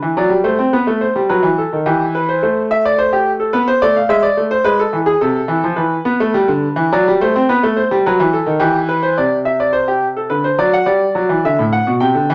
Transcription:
0.00 0.16 E3 medium
0.00 0.14 B4 medium
0.17 0.31 F#3 medium
0.17 0.35 D5 medium
0.29 0.44 G3 medium
0.44 0.58 A3 medium
0.44 0.62 C5 medium
0.59 0.73 C4 medium
0.73 0.87 B3 medium
0.73 0.91 B4 medium
0.87 1.05 A3 medium
1.01 1.19 C5 medium
1.16 1.29 G3 medium
1.29 1.43 F#3 medium
1.29 1.47 B4 medium
1.43 1.60 E3 medium
1.58 1.76 A4 medium
1.73 1.86 D#3 medium
1.86 2.40 E3 medium
1.86 2.03 G4 medium
2.15 2.28 B4 medium
2.29 2.41 C5 medium
2.43 3.51 A3 medium
2.43 2.60 C5 medium
2.71 2.84 E5 medium
2.85 2.98 D5 medium
2.99 3.12 C5 medium
3.13 3.30 G4 medium
3.40 3.53 A4 medium
3.53 3.71 B3 medium
3.53 3.67 B4 medium
3.68 3.81 C5 medium
3.82 4.00 A3 medium
3.82 3.96 D5 medium
3.96 4.10 F5 medium
4.09 4.27 G#3 medium
4.09 4.23 E5 medium
4.23 4.40 D5 medium
4.37 4.55 A3 medium
4.51 4.65 C5 medium
4.64 4.83 G#3 medium
4.64 4.79 B4 medium
4.79 4.97 A4 medium
4.93 5.11 E3 medium
5.06 5.21 G#4 medium
5.21 5.39 C3 medium
5.21 5.76 A4 medium
5.48 5.63 E3 medium
5.64 5.78 F3 medium
5.76 5.95 E3 medium
5.76 6.86 B4 medium
6.05 6.19 B3 medium
6.20 6.34 A3 medium
6.34 6.48 G3 medium
6.48 6.66 D3 medium
6.76 6.90 E3 medium
6.92 7.05 F#3 medium
6.92 7.10 D5 medium
7.08 7.20 G3 medium
7.21 7.34 A3 medium
7.21 7.38 C5 medium
7.36 7.48 C4 medium
7.49 7.62 B3 medium
7.49 7.66 B4 medium
7.63 7.80 A3 medium
7.76 7.94 C5 medium
7.91 8.04 G3 medium
8.06 8.19 F#3 medium
8.06 8.23 B4 medium
8.20 8.37 E3 medium
8.33 8.51 A4 medium
8.46 8.60 D#3 medium
8.60 9.16 E3 medium
8.60 8.78 G4 medium
8.89 9.03 B4 medium
9.03 9.17 C5 medium
9.18 10.27 C3 medium
9.18 9.35 D5 medium
9.45 9.60 E5 medium
9.60 9.74 D5 medium
9.73 9.87 C5 medium
9.88 10.05 G4 medium
10.17 10.30 A4 medium
10.30 10.48 D3 medium
10.30 10.44 B4 medium
10.44 10.58 C5 medium
10.58 10.76 F#3 medium
10.58 10.73 D5 medium
10.73 10.87 F#5 medium
10.86 11.04 G3 medium
10.86 11.42 D5 medium
11.15 11.29 F#3 medium
11.29 11.43 E3 medium
11.45 11.58 D3 medium
11.45 11.62 E5 medium
11.59 11.76 A2 medium
11.72 11.90 F#5 medium
11.87 12.00 B2 medium
12.00 12.14 C3 medium
12.00 12.35 G5 medium
12.15 12.28 D3 medium
12.30 12.35 E3 medium

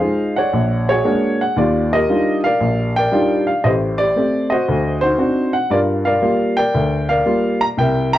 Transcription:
0.00 0.37 G#3 medium
0.00 0.37 D#4 soft
0.00 0.38 F4 medium
0.00 0.51 G#4 medium
0.00 0.51 C5 medium
0.00 0.51 D#5 medium
0.00 0.33 F5 medium
0.36 0.87 C#5 medium
0.36 1.36 D5 medium
0.36 0.89 F#5 medium
0.53 0.98 A#1 medium
0.89 1.04 F#4 medium
0.89 1.54 G#4 medium
0.89 1.41 C#5 medium
1.05 1.41 G#3 medium
1.05 1.41 A#3 medium
1.05 1.41 D4 medium
1.05 1.41 F#4 medium
1.41 1.56 F#5 medium
1.56 2.01 D#2 medium
1.56 2.08 F4 medium
1.56 1.92 G4 medium
1.56 1.92 D5 medium
1.93 2.92 G4 medium
1.93 2.44 A#4 medium
1.93 2.40 D#5 medium
2.09 2.45 G3 medium
2.09 2.45 D4 soft
2.09 2.45 D#4 medium
2.09 2.45 F4 medium
2.44 2.97 A#4 medium
2.44 2.97 D5 medium
2.44 2.91 F5 loud
2.60 3.05 A#1 medium
2.96 3.62 A#4 medium
2.96 3.61 D5 medium
2.96 3.43 G5 loud
3.12 3.48 G3 medium
3.12 3.48 D4 soft
3.12 3.48 D#4 medium
3.12 3.48 F4 medium
3.47 3.64 F5 medium
3.64 4.08 A1 medium
3.64 4.09 A2 medium
3.64 3.99 G4 medium
3.64 4.51 C5 medium
3.64 3.72 D#5 medium
3.98 4.16 G4 medium
3.98 4.46 D5 loud
4.16 4.52 A3 medium
4.16 4.52 C4 soft
4.16 4.52 G4 medium
4.50 5.02 F#4 medium
4.50 5.00 C5 medium
4.50 4.98 D#5 medium
4.68 5.12 D2 medium
5.01 5.18 D#4 medium
5.01 5.18 F#4 medium
5.01 5.54 C5 loud
5.18 5.54 C4 medium
5.18 5.55 D4 soft
5.18 5.55 D#4 soft
5.18 5.55 F#4 medium
5.53 5.69 F#5 medium
5.70 6.15 G2 medium
5.70 6.21 F4 medium
5.70 6.05 A#4 medium
5.70 5.79 D5 medium
6.05 6.56 A#4 medium
6.05 6.57 D5 medium
6.05 6.58 F5 medium
6.22 6.58 G3 soft
6.22 6.58 A#3 soft
6.22 6.58 F4 medium
6.57 7.09 A#4 medium
6.57 7.09 D5 medium
6.57 7.10 G5 loud
6.74 7.19 D2 medium
7.09 7.74 A#4 medium
7.09 7.74 D5 medium
7.09 7.61 F5 medium
7.26 7.61 G3 medium
7.26 7.62 A#3 soft
7.26 7.62 F4 medium
7.61 7.66 A#5 medium
7.77 8.18 C2 medium
7.77 8.18 A#4 medium
7.77 8.13 E5 medium
7.77 8.13 G5 medium
8.13 8.18 E5 medium
8.13 8.18 G5 medium
8.13 8.18 A#5 loud

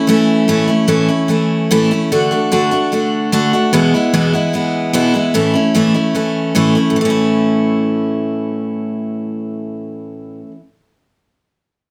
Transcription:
0.07 0.48 E3 medium
0.07 0.48 A3 medium
0.07 0.48 C#4 medium
0.07 0.48 E4 medium
0.48 0.68 A2 medium
0.48 0.69 E3 medium
0.48 0.68 A3 medium
0.48 0.67 C#4 medium
0.48 0.66 E4 medium
0.68 0.87 A3 soft
0.68 0.87 C#4 soft
0.68 0.88 E4 medium
0.88 1.08 A2 medium
0.88 1.09 E3 medium
0.88 1.09 A3 medium
0.88 1.08 C#4 medium
0.88 1.07 E4 medium
1.08 1.28 A3 soft
1.08 1.29 C#4 medium
1.08 1.29 E4 medium
1.28 1.69 E3 medium
1.28 1.70 A3 medium
1.28 1.70 C#4 medium
1.28 1.70 E4 medium
1.71 1.90 A2 medium
1.71 1.91 E3 loud
1.71 1.91 A3 medium
1.71 1.90 C#4 medium
1.71 1.90 E4 loud
1.91 2.11 A3 soft
1.91 2.11 C#4 medium
1.91 2.11 E4 medium
2.12 2.31 D3 medium
2.12 2.31 A3 medium
2.12 2.31 D4 medium
2.12 2.30 F#4 medium
2.31 2.51 A3 soft
2.31 2.52 D4 soft
2.31 2.51 F#4 medium
2.52 2.71 D3 medium
2.52 2.72 A3 medium
2.52 2.71 D4 medium
2.52 2.70 F#4 medium
2.71 2.91 A3 soft
2.71 2.92 D4 soft
2.71 2.91 F#4 medium
2.92 3.31 D3 medium
2.92 3.31 A3 medium
2.92 3.32 D4 medium
2.92 3.32 F#4 medium
3.32 3.52 D3 medium
3.32 3.53 A3 medium
3.32 3.53 D4 loud
3.32 3.52 F#4 medium
3.53 3.73 A3 soft
3.53 3.73 D4 medium
3.53 3.73 F#4 medium
3.73 3.93 E2 medium
3.73 3.93 B2 medium
3.73 3.93 E3 medium
3.73 3.93 G#3 medium
3.73 3.93 B3 medium
3.73 3.93 E4 medium
3.94 4.12 E3 soft
3.94 4.13 G#3 soft
3.94 4.13 B3 soft
3.94 4.14 E4 medium
4.14 4.33 E2 medium
4.14 4.34 B2 medium
4.14 4.33 E3 medium
4.14 4.33 G#3 medium
4.14 4.33 B3 medium
4.14 4.32 E4 medium
4.33 4.52 E3 soft
4.33 4.53 G#3 soft
4.33 4.54 B3 medium
4.33 4.54 E4 medium
4.53 4.94 E3 medium
4.53 4.93 G#3 medium
4.53 4.93 B3 medium
4.53 4.94 E4 medium
4.93 5.14 E2 medium
4.93 5.14 B2 medium
4.93 5.14 E3 medium
4.93 5.14 G#3 medium
4.93 5.14 B3 medium
4.93 5.12 E4 loud
5.14 5.33 E3 soft
5.14 5.34 G#3 soft
5.14 5.34 B3 medium
5.14 5.34 E4 medium
5.34 5.54 A2 medium
5.34 5.55 E3 medium
5.34 5.54 A3 medium
5.34 5.54 C#4 medium
5.34 5.52 E4 medium
5.53 5.74 A3 soft
5.53 5.74 C#4 medium
5.53 5.74 E4 soft
5.75 5.95 A2 medium
5.75 5.95 E3 medium
5.75 5.94 A3 medium
5.75 5.94 C#4 medium
5.75 5.93 E4 medium
5.94 6.14 A3 soft
5.94 6.14 C#4 soft
5.94 6.15 E4 medium
6.15 6.54 E3 medium
6.15 6.54 A3 medium
6.15 6.55 C#4 medium
6.15 6.55 E4 medium
6.55 6.76 A2 medium
6.55 6.76 E3 medium
6.55 6.76 A3 medium
6.55 6.75 C#4 medium
6.55 6.74 E4 loud
6.75 6.97 A3 soft
6.75 6.97 C#4 soft
6.75 6.96 E4 medium
6.90 10.40 A2 medium
6.96 10.46 E3 medium
7.01 10.51 A3 medium
7.05 10.55 C#4 medium
7.10 10.60 E4 medium

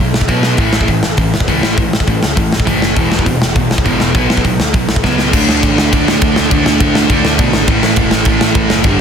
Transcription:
0.00 0.13 B1 medium
0.00 0.12 B2 medium
0.00 0.13 F#3 medium
0.14 0.28 B1 medium
0.14 snare loud
0.21 kick medium
0.28 0.58 B1 medium
0.28 0.57 B2 medium
0.28 0.58 F#3 medium
0.28 0.58 B3 medium
0.28 kick medium
0.28 open hi-hat medium
0.43 snare loud
0.57 0.72 A1 medium
0.57 0.86 A2 medium
0.57 0.87 E3 loud
0.57 0.88 A3 medium
0.57 kick loud
0.57 open hi-hat medium
0.73 0.88 A1 medium
0.73 snare loud
0.81 kick medium
0.88 1.03 A1 medium
0.88 1.01 A2 medium
0.88 1.02 E3 medium
0.88 kick medium
0.88 open hi-hat soft
1.03 1.18 A1 medium
1.03 snare loud
1.17 1.33 A1 medium
1.17 1.31 A2 medium
1.17 1.31 E3 medium
1.17 kick loud
1.17 open hi-hat medium
1.33 1.47 E1 medium
1.33 snare loud
1.40 kick loud
1.48 1.62 C#2 medium
1.48 1.76 A2 medium
1.48 1.77 E3 medium
1.48 1.77 A3 medium
1.48 kick medium
1.48 open hi-hat soft
1.63 1.77 A1 medium
1.63 snare loud
1.77 1.92 A1 medium
1.77 1.91 A2 medium
1.77 1.91 E3 medium
1.77 kick loud
1.77 open hi-hat medium
1.93 2.08 A1 medium
1.93 snare loud
2.00 kick medium
2.07 2.22 A1 medium
2.07 2.20 A2 medium
2.07 2.21 E3 medium
2.07 kick medium
2.07 open hi-hat soft
2.23 2.37 C#2 medium
2.23 snare loud
2.36 2.51 A1 medium
2.36 2.50 A2 medium
2.36 2.50 E3 loud
2.36 kick loud
2.36 open hi-hat medium
2.52 2.67 A1 medium
2.52 snare loud
2.60 kick medium
2.66 2.95 F#1 medium
2.66 2.95 A2 medium
2.66 2.95 E3 medium
2.66 2.95 A3 loud
2.66 kick medium
2.66 open hi-hat medium
2.82 snare loud
2.96 3.11 E1 medium
2.96 3.25 E2 loud
2.96 3.25 B2 loud
2.96 3.25 E3 loud
2.96 kick loud
2.96 open hi-hat medium
3.12 3.26 E1 medium
3.12 snare loud
3.19 kick medium
3.26 3.40 E1 loud
3.26 3.39 E2 medium
3.26 3.39 B2 medium
3.26 kick medium
3.26 open hi-hat medium
3.42 3.55 E1 medium
3.42 snare loud
3.55 3.70 E1 medium
3.55 3.69 E2 medium
3.55 3.69 B2 medium
3.55 kick loud
3.55 open hi-hat soft
3.71 3.85 B1 medium
3.71 snare loud
3.78 kick medium
3.85 4.00 G#1 medium
3.85 4.13 E2 medium
3.85 4.12 B2 medium
3.85 4.14 E3 medium
3.85 kick loud
3.85 open hi-hat soft
4.00 4.15 E1 medium
4.00 snare medium
4.14 4.29 B1 medium
4.14 4.43 B2 medium
4.14 4.43 F#3 medium
4.14 4.43 B3 medium
4.14 kick loud
4.14 open hi-hat soft
4.30 4.44 B1 medium
4.30 snare loud
4.37 kick medium
4.44 4.59 B1 medium
4.44 4.57 B2 medium
4.44 4.58 F#3 medium
4.44 kick medium
4.44 open hi-hat soft
4.60 4.74 D2 medium
4.60 snare loud
4.73 4.88 B1 medium
4.73 4.87 B2 medium
4.73 4.87 F#3 medium
4.73 kick loud
4.73 open hi-hat medium
4.89 5.03 B1 medium
4.89 snare loud
4.96 kick medium
5.04 5.32 C#2 medium
5.04 5.31 B2 medium
5.04 5.32 F#3 medium
5.04 5.32 B3 medium
5.04 kick medium
5.04 snare medium
5.19 snare medium
5.32 5.47 D2 loud
5.32 5.90 D3 loud
5.32 5.93 A3 loud
5.32 5.92 D4 loud
5.32 kick loud
5.32 crash loud
5.32 crash medium
5.48 5.61 D2 medium
5.48 snare loud
5.63 5.76 A1 medium
5.63 kick loud
5.63 crash medium
5.78 5.91 D2 medium
5.78 snare loud
5.92 6.06 D2 loud
5.92 6.49 D3 medium
5.92 6.52 A3 medium
5.92 6.51 D4 medium
5.92 kick loud
5.92 crash medium
6.08 6.21 D2 medium
6.08 snare loud
6.22 6.35 D2 medium
6.22 kick loud
6.22 crash medium
6.36 6.51 D2 medium
6.36 snare loud
6.50 6.64 D2 loud
6.50 7.07 D3 loud
6.50 7.09 A3 loud
6.50 7.09 D4 loud
6.50 kick loud
6.50 crash medium
6.66 6.79 D2 loud
6.66 snare loud
6.80 6.94 D2 loud
6.80 kick loud
6.80 crash medium
6.95 7.08 D2 medium
6.95 snare loud
7.08 7.23 D2 medium
7.08 7.66 D3 medium
7.08 7.67 A3 medium
7.08 7.68 D4 loud
7.08 kick loud
7.08 crash medium
7.24 7.37 D2 medium
7.24 snare loud
7.39 7.52 B2 loud
7.39 kick loud
7.39 crash medium
7.53 7.67 G#1 medium
7.53 snare loud
7.67 7.81 A1 loud
7.67 8.24 A2 loud
7.67 8.26 E3 loud
7.67 8.27 A3 loud
7.67 kick loud
7.67 crash medium
7.83 7.96 A1 medium
7.83 snare loud
7.96 8.11 E1 loud
7.96 kick loud
7.96 crash medium
8.11 8.25 A1 medium
8.11 snare loud
8.25 8.40 A1 loud
8.25 8.84 A2 medium
8.25 8.84 E3 medium
8.25 8.85 A3 loud
8.25 kick loud
8.25 crash medium
8.41 8.55 A1 medium
8.41 snare loud
8.55 8.69 A1 medium
8.55 kick loud
8.55 crash medium
8.70 8.83 F#1 medium
8.70 snare loud
8.84 8.98 G1 medium
8.84 9.01 G2 loud
8.84 9.01 D3 medium
8.84 9.01 G3 loud
8.84 kick loud
8.84 crash medium

